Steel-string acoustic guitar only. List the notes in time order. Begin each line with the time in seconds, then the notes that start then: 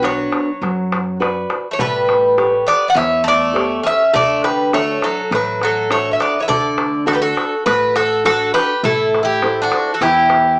0.02 D4 F#4 B4
0.62 F#3
1.20 F#4 B4 D5
1.79 A3
2.38 G4 A4 C#5
2.96 E3
3.54 G4 A4 C#5
4.13 D3
4.73 D4 F#4 A4
5.32 A3
5.90 D4 F#4 A4
6.49 D3
7.06 D4 F#4 A4
7.67 A3
8.24 D4 F#4 A4
8.84 A3
9.43 E4 A4 C5
10.01 E3